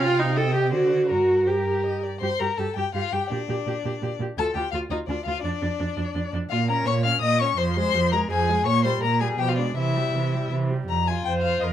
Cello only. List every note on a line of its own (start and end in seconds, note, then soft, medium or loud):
0.00 0.74 C3 medium
0.72 1.11 D3 soft
1.10 2.03 G2 soft
2.22 2.29 G2 soft
2.40 2.47 G2 soft
2.58 2.65 G2 soft
2.76 2.83 G2 soft
2.94 3.01 G2 soft
3.12 3.19 G2 soft
3.31 3.38 A#2 soft
3.49 3.56 A#2 soft
3.67 3.74 A#2 soft
3.85 3.92 A#2 soft
4.02 4.09 A#2 soft
4.20 4.27 A#2 soft
4.38 4.45 D2 soft
4.55 4.62 D2 soft
4.73 4.80 D2 soft
4.90 4.98 D2 soft
5.08 5.16 D2 soft
5.26 5.33 D2 soft
5.43 5.51 F2 medium
5.62 5.69 F2 soft
5.79 5.87 F2 soft
5.97 6.04 F2 soft
6.15 6.22 F2 soft
6.33 6.40 F2 soft
6.51 6.82 A#2 medium
6.87 7.18 A#2 medium
7.22 7.54 A#2 medium
7.58 7.90 F2 medium
7.94 8.26 F2 medium
8.30 8.62 F2 medium
8.67 8.98 A#2 medium
9.02 9.35 A#2 medium
9.39 9.72 B2 medium
9.76 10.10 C3 medium
10.14 10.47 C3 medium
10.52 10.85 C3 medium
10.89 11.22 F2 medium
11.26 11.58 F2 medium
11.63 11.73 F2 medium